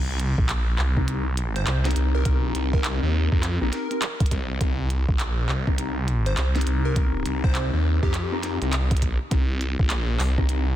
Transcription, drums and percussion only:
0.20 closed hi-hat medium
0.38 kick loud
0.49 clap loud
0.49 closed hi-hat medium
0.79 clap medium
0.97 kick medium
1.08 closed hi-hat medium
1.37 closed hi-hat medium
1.56 closed hi-hat soft
1.67 clap loud
1.67 closed hi-hat medium
1.85 snare medium
1.85 closed hi-hat medium
1.91 closed hi-hat medium
1.96 closed hi-hat medium
2.25 kick loud
2.25 closed hi-hat medium
2.55 closed hi-hat medium
2.73 kick loud
2.84 clap loud
2.84 closed hi-hat medium
3.32 kick medium
3.43 clap medium
3.43 closed hi-hat medium
3.73 snare soft
3.73 closed hi-hat medium
3.91 closed hi-hat soft
4.02 clap loud
4.02 closed hi-hat medium
4.20 kick loud
4.20 closed hi-hat medium
4.26 closed hi-hat medium
4.31 kick medium
4.31 closed hi-hat medium
4.61 kick loud
4.61 closed hi-hat medium
4.90 closed hi-hat medium
5.09 kick loud
5.20 clap loud
5.20 closed hi-hat medium
5.49 clap medium
5.67 kick medium
5.78 closed hi-hat medium
6.08 closed hi-hat medium
6.26 closed hi-hat soft
6.37 clap loud
6.37 closed hi-hat medium
6.56 snare medium
6.56 closed hi-hat soft
6.61 closed hi-hat medium
6.67 closed hi-hat medium
6.96 kick loud
6.96 closed hi-hat medium
7.26 closed hi-hat medium
7.44 kick loud
7.55 clap loud
7.55 closed hi-hat medium
8.03 kick medium
8.14 clap medium
8.14 closed hi-hat medium
8.43 snare soft
8.43 closed hi-hat medium
8.62 closed hi-hat soft
8.73 clap loud
8.73 closed hi-hat medium
8.91 kick loud
8.91 closed hi-hat soft
8.97 closed hi-hat medium
9.02 kick medium
9.02 closed hi-hat medium
9.31 kick loud
9.31 closed hi-hat medium
9.61 closed hi-hat medium
9.79 kick loud
9.90 clap loud
9.90 closed hi-hat medium
10.20 clap medium
10.20 open hi-hat medium
10.38 kick medium
10.49 closed hi-hat medium

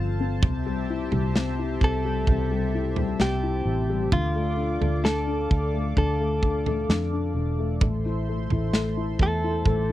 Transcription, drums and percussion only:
0.43 kick loud
0.43 floor tom loud
1.12 floor tom medium
1.36 snare loud
1.81 kick medium
2.27 kick medium
2.27 floor tom medium
2.96 floor tom medium
3.20 snare loud
4.12 kick loud
4.12 floor tom loud
4.82 floor tom medium
5.05 snare loud
5.51 kick medium
5.97 kick medium
5.97 floor tom medium
6.43 kick medium
6.66 floor tom medium
6.90 snare loud
7.81 kick medium
7.81 floor tom loud
8.50 floor tom medium
8.73 snare loud
9.19 kick medium
9.65 kick medium
9.65 floor tom medium

